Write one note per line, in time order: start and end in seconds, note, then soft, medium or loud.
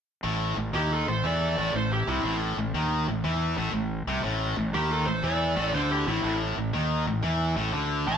0.23 0.55 A1 medium
0.23 0.56 A2 medium
0.57 0.72 A1 medium
0.57 0.70 A2 medium
0.73 1.05 D#2 medium
0.73 1.06 D#3 medium
0.73 0.89 E4 medium
0.73 0.90 G4 medium
0.92 1.07 F4 medium
0.92 1.08 A4 medium
1.07 1.22 A1 medium
1.07 1.20 A2 medium
1.07 1.23 A4 medium
1.07 1.23 C5 medium
1.24 1.55 E2 medium
1.24 1.56 E3 medium
1.24 1.70 A4 medium
1.24 1.73 D5 medium
1.58 1.72 A1 medium
1.58 1.73 A2 medium
1.74 2.05 A1 medium
1.74 2.01 A2 medium
1.74 1.90 A4 medium
1.74 1.91 C5 medium
1.92 2.09 E4 medium
1.92 2.09 G4 medium
2.07 2.22 C2 medium
2.07 2.23 C3 medium
2.07 2.36 C4 medium
2.07 2.35 E4 medium
2.23 2.55 A1 medium
2.23 2.57 A2 loud
2.57 2.72 A1 medium
2.57 2.71 A2 medium
2.74 3.05 D#2 medium
2.74 3.06 D#3 medium
3.08 3.22 A1 medium
3.08 3.21 A2 medium
3.24 3.55 E2 medium
3.24 3.56 E3 loud
3.58 3.72 A1 medium
3.58 3.72 A2 medium
3.73 4.05 A1 medium
3.73 4.00 A2 medium
4.07 4.22 C2 medium
4.07 4.23 C3 medium
4.24 4.55 A1 medium
4.24 4.56 A2 medium
4.57 4.72 A1 medium
4.57 4.70 A2 medium
4.74 5.05 D#2 medium
4.74 5.06 D#3 medium
4.74 4.90 E4 medium
4.74 4.90 G4 medium
4.91 5.05 F4 medium
4.91 5.06 A4 medium
5.06 5.22 A1 medium
5.06 5.20 A2 medium
5.06 5.22 A4 medium
5.06 5.22 C5 medium
5.23 5.54 E2 medium
5.23 5.56 E3 loud
5.23 5.70 A4 medium
5.23 5.72 D5 loud
5.56 5.72 A1 medium
5.56 5.72 A2 medium
5.73 6.04 D2 medium
5.73 6.06 D3 medium
5.73 5.90 A4 medium
5.73 5.90 C5 medium
5.91 6.06 E4 medium
5.91 6.06 G4 medium
6.06 6.21 A1 medium
6.06 6.22 A2 medium
6.06 6.34 C4 medium
6.06 6.34 E4 medium
6.24 6.55 A1 medium
6.24 6.56 A2 medium
6.57 6.72 A1 medium
6.57 6.70 A2 medium
6.73 7.04 D#2 medium
6.73 7.06 D#3 medium
7.07 7.22 A1 medium
7.07 7.20 A2 medium
7.23 7.54 E2 medium
7.23 7.55 E3 medium
7.56 7.71 A1 medium
7.56 7.72 A2 medium
7.73 8.04 D2 medium
7.73 8.06 D3 loud
8.06 8.18 A1 medium
8.06 8.18 A2 medium
8.06 8.18 F5 medium
8.06 8.18 A5 medium